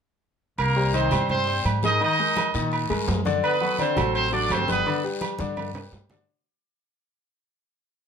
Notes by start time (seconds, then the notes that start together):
0.58 C2 A#3 A#4, high conga, low agogo, long guiro
0.76 G3 G4 C5, high conga
0.93 D#3 C4 D#4 C5 D#5, high conga, low agogo, short guiro
1.11 G2 G3 G4 C5, low conga, low agogo, short guiro
1.29 C4 C5, high conga, low conga, low agogo, long guiro
1.47 G3 G4 C5
1.65 G#2, high conga, low agogo, short guiro
1.83 G#3 D#4 G#4 A#4 D#5, high conga, short guiro
2.00 D#3 D#4 D#5, high conga, low agogo, long guiro
2.19 G#3 G#4 A#4, high conga
2.36 high conga, low agogo, short guiro
2.54 A#2 D#3 D#4 D#5, high conga, short guiro
2.72 high conga, low agogo, long guiro
2.90 G2 G#3 G#4 A#4, high conga, low agogo
3.07 F#2, high conga, low timbale, short guiro
3.25 D3 D4 D5, high conga, short guiro
3.43 B3 B4, high conga, low agogo, long guiro
3.61 F#3 F#4 A4, high conga
3.79 D3 C4 D4 C5 D5, high conga, low agogo, short guiro
3.96 A1 F#3 F#4 A4, low conga, low agogo, short guiro
4.15 C4 C5, high conga, low agogo, long guiro
4.32 F#3 D4 F#4 A4 D5, high conga
4.50 G1 C4 C5, high conga, low timbale, low agogo, short guiro
4.68 G3 B3 G4 B4, high conga, short guiro
4.86 D3 D4 D5, high conga, low agogo, long guiro
5.03 G3 G4 B4, high conga
5.21 high conga, low agogo, short guiro
5.39 G2 D3 D4 D5, high conga, short guiro
5.56 high conga, high timbale, low agogo, long guiro
5.74 G3 G4 B4, low conga, high timbale, low agogo
5.92 G2, low conga, low timbale, short guiro
6.10 D3 D4 D5, low conga, low timbale, short guiro